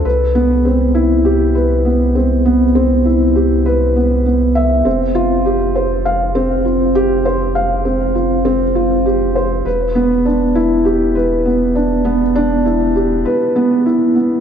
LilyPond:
<<
  \new Staff \with { instrumentName = "Felt piano" } { \time 4/4 \key c \major \tempo 4 = 100 b'8 b8 c'8 e'8 g'8 b'8 b8 c'8 | b8 c'8 e'8 g'8 b'8 b8 b8 e''8 | c'8 f'8 g'8 c''8 f''8 c'8 f'8 g'8 | c''8 f''8 c'8 f'8 c'8 f'8 g'8 c''8 |
b'8 b8 d'8 e'8 g'8 b'8 b8 d'8 | b8 d'8 e'8 g'8 b'8 b8 e'8 b8 | }
  \new Staff \with { instrumentName = "Sub bass" } { \clef bass \time 4/4 \key c \major c,1~ | c,1 | f,,1~ | f,,1 |
e,,1~ | e,,2 r2 | }
>>